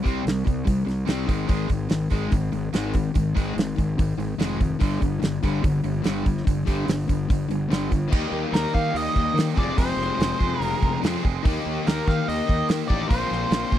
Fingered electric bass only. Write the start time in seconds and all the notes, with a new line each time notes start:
0.06 C2
0.26 C2
0.47 C2
0.68 C2
0.87 C2
1.09 C2
1.29 G#1
1.50 G#1
1.70 G#1
1.91 G#1
2.12 G#1
2.32 G#1
2.54 G#1
2.73 G#1
3.16 G#1
3.37 G#1
3.56 G#1
3.79 G#1
3.99 G#1
4.17 G#1
4.39 F1
4.82 G1
5.02 G1
5.23 G1
5.44 G1
5.64 G1
5.85 G1
6.05 G1
6.47 G1
6.68 G1
6.88 G1
7.09 G1
7.31 G1
7.50 G1
7.71 G1
8.13 D#2
8.32 D#2
8.52 D#2
8.75 D#3
8.94 D#2
9.17 D#2
9.34 D#3
9.58 F1
9.78 F1
9.97 F1
10.19 F1
10.41 F2
10.60 F1
10.82 F1
11.03 F2
11.25 F1
11.45 D#2
11.66 D#2
11.87 D#2
12.08 D#3
12.28 D#2
12.49 D#2
12.69 D#3
12.90 A1
13.11 A#1
13.31 A#1
13.51 A#1
13.73 A#2